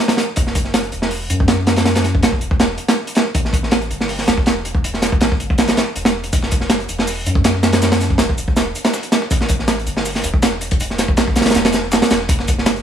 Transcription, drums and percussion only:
0.08 snare, closed hi-hat
0.17 snare, closed hi-hat
0.36 kick, closed hi-hat
0.47 snare
0.55 kick, closed hi-hat
0.65 snare
0.74 snare, closed hi-hat
0.83 closed hi-hat
0.92 closed hi-hat
1.02 snare
1.11 open hi-hat
1.30 closed hi-hat
1.40 kick
1.48 snare, closed hi-hat
1.67 snare, closed hi-hat
1.76 snare, closed hi-hat
1.85 snare, closed hi-hat
1.95 snare, closed hi-hat
2.04 snare, closed hi-hat
2.15 kick
2.23 snare, closed hi-hat
2.32 kick
2.41 closed hi-hat
2.51 kick
2.60 snare, closed hi-hat
2.78 closed hi-hat
2.88 snare, closed hi-hat
3.07 closed hi-hat
3.15 snare, closed hi-hat
3.35 kick, closed hi-hat
3.45 snare
3.53 kick, closed hi-hat
3.63 snare
3.71 snare, closed hi-hat
3.81 closed hi-hat
3.91 closed hi-hat
4.00 snare
4.09 open hi-hat
4.18 snare
4.28 snare, closed hi-hat
4.38 kick
4.46 snare, closed hi-hat
4.65 closed hi-hat
4.75 kick
4.84 closed hi-hat
4.94 snare
5.02 snare, closed hi-hat
5.12 kick
5.21 snare, closed hi-hat
5.32 kick
5.40 closed hi-hat
5.50 kick
5.58 snare, closed hi-hat
5.68 snare, closed hi-hat
5.77 snare, closed hi-hat
5.96 closed hi-hat
6.05 snare, closed hi-hat
6.24 closed hi-hat
6.33 kick, closed hi-hat, shaker
6.43 snare
6.51 kick, closed hi-hat, shaker
6.61 snare
6.70 snare, closed hi-hat, shaker
6.80 closed hi-hat
6.89 closed hi-hat, shaker
6.99 snare
7.07 open hi-hat, shaker
7.26 closed hi-hat, shaker
7.35 kick
7.44 snare, closed hi-hat, shaker
7.55 snare
7.63 snare, closed hi-hat, shaker
7.73 snare, closed hi-hat
7.82 snare, closed hi-hat, shaker
7.92 snare, closed hi-hat
8.01 snare, closed hi-hat, shaker
8.10 kick
8.18 snare, closed hi-hat, shaker
8.29 kick
8.38 closed hi-hat, shaker
8.48 kick
8.56 snare, closed hi-hat, shaker
8.75 closed hi-hat, shaker
8.85 snare, closed hi-hat
8.94 snare, shaker
9.03 closed hi-hat
9.12 snare, closed hi-hat, shaker
9.22 snare
9.31 kick, closed hi-hat, shaker
9.41 snare
9.48 kick, closed hi-hat, shaker
9.59 snare
9.68 snare, closed hi-hat, shaker
9.79 closed hi-hat
9.87 closed hi-hat, shaker
9.97 snare
10.05 open hi-hat, shaker
10.15 snare
10.24 closed hi-hat, shaker
10.34 kick
10.42 snare, closed hi-hat, shaker
10.52 snare
10.61 closed hi-hat, shaker
10.71 kick, closed hi-hat
10.80 closed hi-hat, shaker
10.90 snare
10.98 snare, closed hi-hat, shaker
11.08 kick
11.17 snare, closed hi-hat, shaker
11.28 kick
11.36 snare, closed hi-hat, shaker
11.41 snare, closed hi-hat
11.45 snare, closed hi-hat
11.50 snare, closed hi-hat
11.55 snare, closed hi-hat, shaker
11.65 snare, closed hi-hat
11.72 snare, closed hi-hat, shaker
11.83 snare
11.92 snare, closed hi-hat, shaker
11.93 snare
12.02 snare, closed hi-hat
12.10 snare, closed hi-hat, shaker
12.20 snare
12.29 kick, closed hi-hat, shaker
12.39 snare
12.48 kick, closed hi-hat, shaker
12.58 snare
12.66 snare, closed hi-hat, shaker
12.76 closed hi-hat

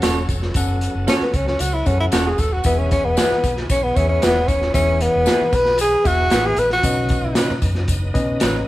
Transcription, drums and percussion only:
0.02 snare, closed hi-hat, tambourine
0.29 kick, closed hi-hat, tambourine
0.42 snare
0.54 kick, closed hi-hat, tambourine
0.81 closed hi-hat, tambourine
1.08 snare, closed hi-hat, tambourine
1.20 snare
1.34 kick, closed hi-hat, tambourine
1.47 snare
1.59 closed hi-hat, tambourine
1.86 kick, closed hi-hat, tambourine
2.12 snare, closed hi-hat, tambourine
2.38 kick, closed hi-hat, tambourine
2.64 kick, closed hi-hat, tambourine
2.91 kick, closed hi-hat, tambourine
3.17 snare, closed hi-hat, tambourine
3.30 snare
3.44 kick, closed hi-hat, tambourine
3.57 snare
3.70 kick, closed hi-hat, tambourine
3.97 kick, closed hi-hat, tambourine
4.22 snare, closed hi-hat, tambourine
4.48 kick, closed hi-hat, tambourine
4.62 snare
4.74 kick, closed hi-hat, tambourine
5.01 closed hi-hat, tambourine
5.26 snare, closed hi-hat, tambourine
5.53 kick, closed hi-hat, tambourine
5.65 snare
5.78 closed hi-hat, tambourine
6.05 kick, closed hi-hat, tambourine
6.30 snare, closed hi-hat, tambourine
6.56 closed hi-hat, tambourine
6.70 snare
6.83 kick, closed hi-hat, tambourine
7.09 kick, closed hi-hat, tambourine
7.35 snare, closed hi-hat, tambourine
7.49 snare
7.62 kick, closed hi-hat, tambourine
7.75 snare
7.88 kick, closed hi-hat, tambourine
8.15 kick, closed hi-hat, tambourine
8.40 snare, closed hi-hat, tambourine

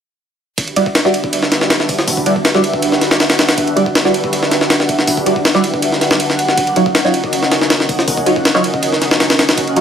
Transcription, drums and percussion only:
0.58 kick, ride
0.68 ride
0.76 ride
0.86 kick
0.95 snare, ride
1.05 snare
1.14 ride
1.24 kick
1.33 ride
1.43 snare
1.52 snare, ride
1.61 snare
1.70 snare, ride
1.80 snare
1.89 kick, ride
1.99 snare
2.08 kick, open hi-hat
2.17 kick
2.26 ride
2.36 kick
2.45 snare, ride
2.55 snare
2.64 ride
2.74 kick
2.82 ride
2.92 snare
3.01 snare, ride
3.11 snare
3.20 snare, ride
3.30 snare, ride
3.39 snare, ride
3.49 snare, ride
3.58 kick, ride
3.67 ride
3.77 ride
3.86 kick
3.95 snare, ride
4.05 snare
4.14 ride
4.24 kick
4.33 ride
4.43 snare
4.51 snare, ride
4.61 snare
4.70 snare, ride
4.80 snare
4.89 kick, ride
4.99 snare
5.07 kick, open hi-hat
5.17 kick
5.26 ride
5.36 kick
5.45 snare, ride
5.55 snare
5.64 ride
5.74 kick
5.82 ride
5.92 snare
6.01 snare, ride
6.11 snare
6.20 ride
6.30 snare
6.39 ride
6.48 snare
6.57 kick, ride
6.67 ride
6.76 ride
6.86 kick
6.95 snare, ride
7.05 snare
7.14 ride
7.24 kick
7.33 ride
7.43 snare
7.51 snare, ride
7.61 snare
7.70 snare, ride
7.80 snare
7.89 kick, ride
7.99 snare
8.08 kick, open hi-hat
8.17 kick
8.26 ride
8.36 kick
8.45 snare, ride
8.55 snare
8.64 ride
8.74 kick
8.83 ride
8.93 snare
9.02 snare, ride
9.11 snare
9.20 snare, ride
9.30 snare, ride
9.39 snare, ride
9.49 snare, ride
9.58 kick, ride
9.67 ride
9.76 ride

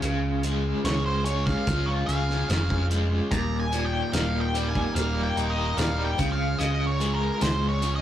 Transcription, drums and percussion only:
0.02 closed hi-hat
0.43 closed hi-hat
0.85 snare, closed hi-hat
1.26 closed hi-hat
1.47 kick, snare
1.67 kick, closed hi-hat
2.09 closed hi-hat
2.30 snare
2.50 snare, closed hi-hat
2.70 kick
2.91 closed hi-hat
3.32 kick, closed hi-hat, tambourine
3.72 closed hi-hat, tambourine
4.13 snare, closed hi-hat, tambourine
4.55 closed hi-hat, tambourine
4.75 kick
4.96 closed hi-hat
5.37 closed hi-hat
5.77 snare, closed hi-hat, tambourine
6.18 kick, closed hi-hat, tambourine
6.59 closed hi-hat, tambourine
7.00 closed hi-hat, tambourine
7.41 snare, closed hi-hat, tambourine
7.82 closed hi-hat, tambourine

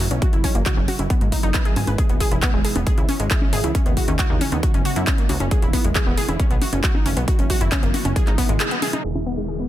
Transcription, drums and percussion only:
0.11 closed hi-hat
0.22 kick, closed hi-hat
0.33 closed hi-hat
0.44 kick, open hi-hat
0.55 closed hi-hat
0.66 kick, clap, closed hi-hat
0.88 open hi-hat, high conga
0.99 closed hi-hat, high conga
1.10 kick, closed hi-hat
1.21 closed hi-hat
1.32 kick, open hi-hat
1.54 kick, clap, closed hi-hat
1.65 closed hi-hat
1.76 open hi-hat, high conga
1.87 closed hi-hat, high conga
1.98 kick, closed hi-hat
2.09 closed hi-hat
2.20 kick, open hi-hat
2.31 closed hi-hat
2.42 kick, clap, closed hi-hat
2.65 open hi-hat
2.76 closed hi-hat, high conga
2.87 kick, closed hi-hat
2.98 closed hi-hat
3.09 open hi-hat, high conga
3.20 closed hi-hat
3.31 kick, clap, closed hi-hat
3.42 high conga
3.53 open hi-hat
3.64 closed hi-hat
3.75 kick, closed hi-hat
3.86 closed hi-hat
3.97 kick, open hi-hat
4.08 closed hi-hat
4.19 kick, clap, closed hi-hat
4.41 open hi-hat, high conga
4.52 closed hi-hat, high conga
4.63 kick, closed hi-hat
4.74 closed hi-hat
4.85 open hi-hat
4.96 closed hi-hat
5.07 kick, clap, closed hi-hat
5.18 closed hi-hat
5.29 open hi-hat, high conga
5.40 closed hi-hat, high conga
5.51 kick, closed hi-hat
5.62 closed hi-hat
5.73 kick, open hi-hat
5.84 closed hi-hat
5.95 kick, clap, closed hi-hat
6.17 open hi-hat
6.29 closed hi-hat, high conga
6.40 kick, closed hi-hat
6.51 closed hi-hat
6.62 open hi-hat, high conga
6.73 closed hi-hat
6.84 kick, clap, closed hi-hat
6.95 high conga
7.06 open hi-hat
7.17 closed hi-hat
7.28 kick, closed hi-hat
7.39 closed hi-hat
7.50 kick, open hi-hat
7.61 closed hi-hat
7.72 kick, clap, closed hi-hat
7.83 closed hi-hat
7.94 open hi-hat, high conga
8.05 closed hi-hat, high conga
8.16 kick, closed hi-hat
8.27 clap, closed hi-hat
8.38 kick, open hi-hat
8.49 closed hi-hat
8.60 clap, closed hi-hat
8.71 closed hi-hat
8.82 open hi-hat, high conga
8.93 closed hi-hat, high conga
9.04 crash
9.15 high conga

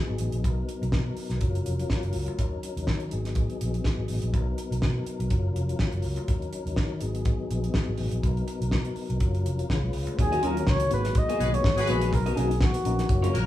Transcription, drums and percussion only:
0.18 closed hi-hat
0.32 closed hi-hat
0.44 kick, closed hi-hat
0.69 closed hi-hat
0.83 closed hi-hat
0.92 kick, snare
1.17 open hi-hat
1.30 snare, closed hi-hat
1.41 kick, closed hi-hat
1.55 closed hi-hat
1.66 closed hi-hat
1.79 closed hi-hat
1.90 kick, snare
2.03 closed hi-hat
2.13 open hi-hat
2.26 closed hi-hat
2.39 kick, closed hi-hat
2.63 closed hi-hat
2.77 closed hi-hat
2.87 kick, snare
3.00 closed hi-hat
3.11 closed hi-hat
3.25 snare, closed hi-hat
3.35 kick, closed hi-hat
3.50 closed hi-hat
3.61 closed hi-hat
3.74 closed hi-hat
3.84 kick, snare
4.08 open hi-hat
4.22 closed hi-hat
4.34 kick, closed hi-hat
4.58 closed hi-hat
4.72 closed hi-hat
4.82 kick, snare
5.06 closed hi-hat
5.20 closed hi-hat
5.30 kick, closed hi-hat
5.56 closed hi-hat
5.69 closed hi-hat
5.79 kick, snare
5.92 closed hi-hat
6.02 open hi-hat
6.16 closed hi-hat
6.28 kick, closed hi-hat
6.42 closed hi-hat
6.53 closed hi-hat
6.67 closed hi-hat
6.76 kick, snare
7.01 closed hi-hat
7.15 closed hi-hat
7.25 kick, closed hi-hat
7.51 closed hi-hat
7.64 closed hi-hat
7.74 kick, snare
7.98 open hi-hat
8.11 closed hi-hat
8.23 kick, closed hi-hat
8.37 closed hi-hat
8.48 closed hi-hat
8.62 closed hi-hat
8.71 kick, snare
8.85 closed hi-hat
8.96 open hi-hat
9.10 closed hi-hat
9.20 kick, closed hi-hat
9.35 closed hi-hat
9.46 closed hi-hat
9.59 closed hi-hat
9.70 kick, snare
9.93 open hi-hat
10.07 closed hi-hat
10.19 kick, closed hi-hat
10.33 closed hi-hat
10.43 closed hi-hat
10.57 closed hi-hat
10.67 kick, snare
10.80 closed hi-hat
10.91 closed hi-hat
11.04 snare, closed hi-hat
11.15 kick, closed hi-hat
11.29 closed hi-hat
11.41 closed hi-hat
11.54 closed hi-hat
11.64 kick, snare
11.78 closed hi-hat
11.87 closed hi-hat
12.01 closed hi-hat
12.13 kick, closed hi-hat
12.26 closed hi-hat
12.37 closed hi-hat
12.51 closed hi-hat
12.61 kick, snare
12.74 closed hi-hat
12.85 closed hi-hat
12.99 snare, closed hi-hat
13.09 kick, closed hi-hat
13.24 closed hi-hat
13.35 closed hi-hat

